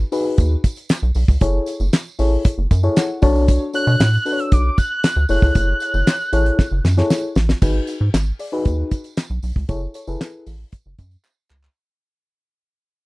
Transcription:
0.12 D#4 F#4 G#4 B4, open hi-hat, tambourine
0.38 D#2, kick, closed hi-hat, tambourine
0.64 kick, closed hi-hat, tambourine
0.76 closed hi-hat, tambourine
0.89 snare, clap, closed hi-hat, tambourine
1.02 B1
1.15 B1, open hi-hat, tambourine
1.28 C#2, kick, tambourine
1.41 F#1 E4 G#4 A4 C#5, kick, closed hi-hat, tambourine
1.66 closed hi-hat, tambourine
1.80 F#1, tambourine
1.93 snare, clap, closed hi-hat, tambourine
2.19 A1 E4 G#4 A4 C#5, open hi-hat, tambourine
2.45 kick, closed hi-hat, tambourine
2.58 F#1
2.71 F#2, kick, closed hi-hat, tambourine
2.83 E4 G#4 A4 C#5, tambourine
2.96 F#5, snare, clap, closed hi-hat, tambourine
3.22 B1 D4 F#4 A4 C#5 A5, kick, open hi-hat, tambourine
3.36 tambourine
3.48 kick, closed hi-hat, tambourine
3.73 D4 F#4 A4 C#5 F#6, closed hi-hat, tambourine
3.87 B2, tambourine
4.00 A2, snare, clap, closed hi-hat, tambourine
4.13 tambourine
4.25 D4 F#4 A4 B4, open hi-hat, tambourine
4.33 C#5
4.39 E6, closed hi-hat
4.52 B1 D6, kick, closed hi-hat, tambourine
4.78 F#6, kick, closed hi-hat, tambourine
5.04 snare, clap, closed hi-hat, tambourine
5.16 D2
5.29 F#1 E4 G#4 A4 C#5 F#6, open hi-hat, tambourine
5.42 C#2, kick, tambourine
5.55 F#1, kick, closed hi-hat, tambourine
5.80 closed hi-hat, tambourine
5.94 F#1, tambourine
6.07 snare, clap, closed hi-hat, tambourine
6.20 tambourine
6.33 A1 E4 G#4 A4 C#5, closed hi-hat, tambourine
6.46 closed hi-hat
6.59 kick, snare, tambourine
6.71 F#1
6.84 F#2, snare, tambourine
6.97 E4 G#4 A4 C#5, snare
7.10 snare, tambourine
7.35 A1, snare, tambourine
7.49 snare, tambourine
7.62 G#1 D#4 F#4 G#4 B4, kick, crash, tambourine
7.87 closed hi-hat, tambourine
8.01 G#2
8.14 G#1, snare, clap, closed hi-hat, tambourine
8.39 G#4 D5, open hi-hat, tambourine
8.52 D#4 F#4 G#4 B4
8.65 D#2, kick, closed hi-hat, tambourine
8.91 kick, closed hi-hat, tambourine
9.04 closed hi-hat, tambourine
9.17 snare, clap, closed hi-hat, tambourine
9.30 B1
9.42 B1, open hi-hat, tambourine
9.56 C#2, kick
9.69 F#1 E4 G#4 A4 C#5, kick, closed hi-hat, tambourine
9.94 A4 C#5, closed hi-hat, tambourine
10.07 F#1 E4 G#4 A4 B4, tambourine
10.21 snare, clap, closed hi-hat, tambourine
10.46 A1, open hi-hat, tambourine
10.72 kick, closed hi-hat, tambourine
10.86 F#1
10.98 F#2, kick, closed hi-hat, tambourine
11.11 closed hi-hat, tambourine
11.24 clap, tambourine
11.49 C#2, clap, tambourine
11.63 clap, tambourine

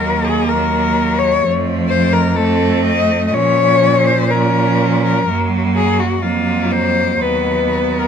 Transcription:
Already playing: D#2 F#3 A#3 A#4
0.24 G#4
0.49 F#3 A#4
1.19 C#5
1.43 F2 F3 A3
1.89 C5
2.13 A#4
2.36 A3 C4 A4
2.85 D#5
3.27 D#5
3.32 A#2 F3 C#4 C#5
4.07 C5
4.31 F3 C#4 A#4
5.05 A#4
5.29 F#2 F#3 A#3
5.75 G#4
6.00 F#4
6.22 F2 F#3 A#3 F4
6.71 C5
7.20 D#2 F#3 B3 B4
7.99 A#4

